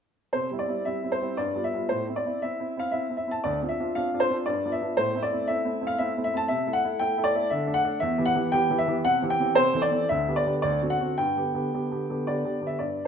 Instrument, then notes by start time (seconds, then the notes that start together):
grand piano
0.33 C3 C5
0.51 G3 C4 E4
0.59 D5
0.68 G3 C4 E4
0.85 G3 C4 E4 E5
1.04 G3 C4 E4
1.12 C5
1.21 G3 C4 E4
1.37 G2 D5
1.55 G3 B3 F4
1.64 E5
1.74 G3 B3 F4
1.89 A2 C5
2.08 C4 E4
2.16 D5
2.26 C4 E4
2.42 C4 E4 E5
2.59 C4 E4
2.77 C4 E4 F5
2.91 C4 E4 E5
3.10 C4 E4
3.17 E5
3.27 C4 E4
3.31 A5
3.44 D2 D5
3.62 C4 D4 F4
3.69 E5
3.80 C4 D4 F4
3.95 C4 D4 F4 F5
4.13 C4 D4 F4
4.20 C5
4.30 C4 D4 F4
4.46 G2 D5
4.65 B3 D4 F4
4.72 E5
4.81 B3 D4 F4
4.97 A2 C5
5.15 A3 C4 E4
5.23 D5
5.32 A3 C4 E4
5.48 A3 C4 E4 E5
5.64 A3 C4 E4
5.81 A3 C4 E4
5.87 F5
5.99 A3 C4 E4 E5
6.17 A3 C4 E4
6.24 E5
6.34 A3 C4 E4 A5
6.48 C3 E5
6.67 A3 E4 A4
6.73 F#5
6.84 A3 E4 A4
6.99 A3 E4 A4 G5
7.18 A3 E4 A4
7.24 D5
7.35 A3 E4 A4
7.50 D3 E5
7.67 A3 D4 A4
7.74 F#5
7.84 A3 D4 A4
8.00 E2 E5
8.18 E3 B3 G4
8.26 F#5
8.35 E3 B3 G4
8.52 E3 B3 G4 G5
8.70 E3 B3 G4
8.78 E5
8.87 E3 B3 G4
9.05 C3 F#5
9.22 E3 C4 G4
9.30 G5
9.40 E3 C4 G4
9.55 C3 C5
9.74 E3 C4 A4
9.82 D5
9.91 E3 C4 A4
10.09 D2 E5
10.28 D3 B3 G4
10.36 D5
10.45 D3 B3 G4
10.62 D2 D5
10.82 D3 C4 F#4
10.90 F#5
11.00 D3 C4 F#4
11.18 G2 G5
11.37 D3 B3 G4
11.55 D3 B3 G4
11.73 D3 B3 G4
11.91 D3 B3 G4
12.09 D3 B3 G4
12.27 D3 B3 G4 D5
12.44 D3 B3 G4
12.61 D3 B3 G4
12.67 E5
12.79 G2 D5